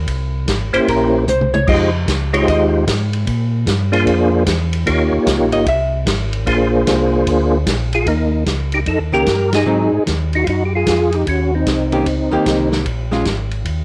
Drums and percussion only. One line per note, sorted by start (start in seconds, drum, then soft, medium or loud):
0.08 kick soft
0.08 ride medium
0.48 kick soft
0.48 snare medium
0.48 hi-hat pedal medium
0.48 ride medium
0.74 ride soft
0.88 kick soft
0.88 ride medium
1.28 hi-hat pedal medium
1.28 mid tom medium
1.41 mid tom medium
1.54 mid tom medium
1.68 kick medium
1.68 crash medium
2.08 kick soft
2.08 snare medium
2.08 hi-hat pedal medium
2.08 ride medium
2.34 ride medium
2.48 kick soft
2.48 ride medium
2.87 kick soft
2.87 snare medium
2.87 hi-hat pedal medium
2.87 ride medium
3.13 ride medium
3.27 kick soft
3.27 ride medium
3.67 kick soft
3.67 snare medium
3.67 hi-hat pedal medium
3.67 ride medium
3.93 ride medium
4.07 kick soft
4.07 ride medium
4.46 kick soft
4.46 snare medium
4.46 hi-hat pedal medium
4.46 ride medium
4.73 ride medium
4.86 kick soft
4.86 ride medium
5.27 kick soft
5.27 snare medium
5.27 hi-hat pedal medium
5.27 ride medium
5.52 ride medium
5.66 kick soft
5.66 ride medium
6.07 kick soft
6.07 snare medium
6.07 hi-hat pedal medium
6.07 ride medium
6.33 ride soft
6.47 kick soft
6.47 ride medium
6.87 kick soft
6.87 snare medium
6.87 hi-hat pedal medium
6.87 ride medium
7.27 kick soft
7.27 ride medium
7.67 kick soft
7.67 snare medium
7.67 hi-hat pedal medium
7.67 ride medium
7.93 ride soft
8.06 kick soft
8.06 ride medium
8.46 kick soft
8.46 snare medium
8.46 hi-hat pedal medium
8.46 ride medium
8.72 ride soft
8.86 kick soft
8.86 ride medium
9.26 kick soft
9.26 snare medium
9.26 hi-hat pedal medium
9.26 ride medium
9.53 snare medium
9.53 ride medium
10.06 kick soft
10.06 snare medium
10.06 hi-hat pedal medium
10.06 ride medium
10.33 ride soft
10.47 kick soft
10.47 ride medium
10.86 kick soft
10.86 snare medium
10.86 hi-hat pedal medium
10.86 ride medium
11.12 ride soft
11.26 kick soft
11.26 ride medium
11.66 kick soft
11.66 snare medium
11.66 hi-hat pedal soft
11.66 ride medium
11.92 ride soft
12.06 kick soft
12.06 ride medium
12.46 kick soft
12.46 snare medium
12.46 hi-hat pedal medium
12.46 ride medium
12.72 snare medium
12.86 kick soft
12.86 ride medium
13.12 snare soft
13.25 kick soft
13.25 snare medium
13.25 hi-hat pedal soft
13.25 ride medium
13.51 ride soft
13.65 kick soft
13.65 ride medium